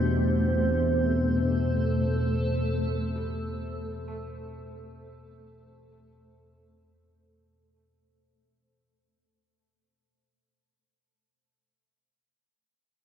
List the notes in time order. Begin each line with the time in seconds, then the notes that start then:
Already playing: E2 B2 A3 D4 G4 C5
0.00 A4
3.16 G3
4.08 A3